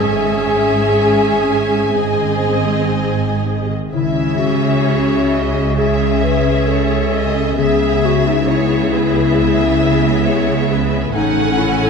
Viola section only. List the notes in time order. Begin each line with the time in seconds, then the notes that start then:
Already playing: C#4 G#4
1.94 C4 G#4
3.92 C#4 G#4
5.77 C#4 G#4
7.58 B3 G#4
8.49 B3 G#4
11.13 C#4 A4